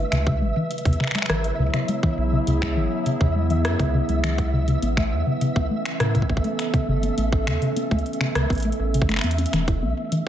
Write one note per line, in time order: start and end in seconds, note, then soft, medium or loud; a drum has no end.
0.00 0.12 E3 medium
0.00 0.12 A3 medium
0.00 0.12 D4 medium
0.00 0.12 G4 medium
0.00 2.00 B4 medium
0.00 9.52 E5 medium
0.12 0.43 C#2 loud
0.12 4.82 C#3 medium
0.12 0.23 C#3 medium
0.12 finger snap medium
0.12 closed hi-hat medium
0.24 0.37 C#3 loud
0.24 4.82 F#3 medium
0.24 kick loud
0.41 0.52 G#1 medium
0.41 0.52 G#3 medium
0.56 0.70 E3 medium
0.71 closed hi-hat medium
0.78 closed hi-hat medium
0.85 0.97 E2 loud
0.85 0.96 C#3 medium
0.85 kick loud
0.85 closed hi-hat soft
0.93 closed hi-hat soft
1.00 1.11 C#3 loud
1.00 finger snap soft
1.04 10.28 B3 medium
1.04 finger snap soft
1.07 finger snap soft
1.11 5.95 E4 medium
1.11 finger snap soft
1.15 1.25 G#3 medium
1.15 finger snap soft
1.15 closed hi-hat soft
1.18 finger snap medium
1.22 finger snap medium
1.26 1.52 G#1 medium
1.26 1.44 E3 medium
1.26 finger snap medium
1.26 cross-stick loud
1.26 closed hi-hat medium
1.42 4.83 G#4 medium
1.42 closed hi-hat soft
1.59 1.70 C#2 loud
1.59 1.70 C#3 medium
1.74 1.84 C#3 loud
1.74 finger snap soft
1.74 closed hi-hat soft
1.88 1.99 G#3 medium
1.88 closed hi-hat medium
2.03 2.17 E3 medium
2.03 kick loud
2.18 2.40 B1 medium
2.32 2.43 C#3 medium
2.47 2.78 C#2 loud
2.47 2.58 C#3 loud
2.47 closed hi-hat medium
2.62 2.73 G#3 medium
2.62 finger snap medium
2.62 kick medium
2.62 closed hi-hat soft
2.77 2.88 G#1 medium
2.77 2.91 E3 medium
3.06 3.17 C#3 medium
3.06 closed hi-hat medium
3.21 3.66 E2 loud
3.21 3.31 C#3 loud
3.21 kick loud
3.35 3.46 G#3 medium
3.50 3.64 E3 medium
3.50 closed hi-hat soft
3.65 3.76 F#2 loud
3.65 cross-stick loud
3.65 closed hi-hat medium
3.79 4.02 C#2 medium
3.79 3.90 C#3 medium
3.79 kick loud
3.79 closed hi-hat soft
3.94 4.05 C#3 loud
4.09 4.77 C#2 medium
4.09 4.20 G#3 medium
4.09 closed hi-hat soft
4.24 4.38 E3 medium
4.24 finger snap medium
4.24 closed hi-hat medium
4.38 kick medium
4.38 closed hi-hat soft
4.53 4.64 C#3 medium
4.68 4.78 C#3 loud
4.68 closed hi-hat soft
4.82 5.13 A1 loud
4.82 10.28 E3 medium
4.82 4.93 B3 medium
4.82 closed hi-hat medium
4.97 5.11 A3 medium
4.97 finger snap medium
4.97 kick loud
5.12 5.23 E2 medium
5.16 9.53 C#4 medium
5.16 10.28 A4 medium
5.27 5.37 C#3 medium
5.27 10.28 A3 medium
5.41 5.52 C#3 loud
5.41 closed hi-hat medium
5.56 5.67 C#2 loud
5.56 5.67 B3 medium
5.56 kick loud
5.71 5.85 A3 medium
5.85 finger snap medium
5.85 closed hi-hat soft
6.00 6.22 A2 medium
6.00 6.11 C#3 medium
6.00 cross-stick loud
6.00 closed hi-hat medium
6.15 6.25 C#3 loud
6.15 kick soft
6.15 closed hi-hat soft
6.22 kick medium
6.29 6.41 A1 loud
6.29 6.40 B3 medium
6.29 kick medium
6.37 kick medium
6.44 6.58 A3 medium
6.44 closed hi-hat soft
6.59 finger snap medium
6.59 closed hi-hat medium
6.74 6.84 C#3 medium
6.74 kick loud
6.74 closed hi-hat soft
6.88 7.11 G1 medium
6.88 6.99 C#3 loud
7.03 7.14 B3 medium
7.03 closed hi-hat soft
7.18 7.49 A1 loud
7.18 7.32 A3 medium
7.18 closed hi-hat medium
7.32 kick loud
7.47 7.58 E2 medium
7.47 7.58 C#3 medium
7.47 finger snap medium
7.47 closed hi-hat soft
7.62 7.72 C#3 loud
7.62 closed hi-hat soft
7.76 7.87 B3 medium
7.76 closed hi-hat medium
7.91 8.02 C#2 loud
7.91 8.05 A3 medium
7.91 kick medium
7.91 closed hi-hat soft
7.99 closed hi-hat soft
8.06 closed hi-hat soft
8.13 closed hi-hat soft
8.21 8.31 C#3 medium
8.21 finger snap medium
8.35 8.47 C#2 medium
8.35 8.46 C#3 medium
8.35 cross-stick loud
8.35 closed hi-hat medium
8.50 8.72 A1 medium
8.50 8.61 B3 medium
8.50 kick loud
8.50 closed hi-hat soft
8.53 closed hi-hat soft
8.55 closed hi-hat soft
8.58 closed hi-hat soft
8.60 closed hi-hat soft
8.62 8.79 A3 medium
8.62 closed hi-hat soft
8.72 closed hi-hat soft
8.80 9.08 A1 medium
8.94 9.08 C#3 medium
8.94 closed hi-hat medium
9.02 kick loud
9.09 9.20 G1 loud
9.09 9.19 A3 medium
9.09 finger snap soft
9.09 closed hi-hat soft
9.12 finger snap soft
9.14 finger snap soft
9.16 finger snap medium
9.19 finger snap medium
9.21 9.46 E2 medium
9.21 9.38 B3 loud
9.21 finger snap medium
9.21 closed hi-hat medium
9.31 closed hi-hat medium
9.38 9.45 C#4 medium
9.38 closed hi-hat medium
9.46 closed hi-hat medium
9.53 9.84 E1 loud
9.53 9.64 E3 loud
9.53 10.28 E5 medium
9.53 finger snap medium
9.53 closed hi-hat medium
9.65 10.28 D4 medium
9.65 9.78 E4 medium
9.65 kick loud
9.65 closed hi-hat soft
9.73 10.28 G4 medium
9.82 9.94 B1 medium
9.82 9.96 B3 medium
10.12 10.22 E3 medium
10.12 closed hi-hat medium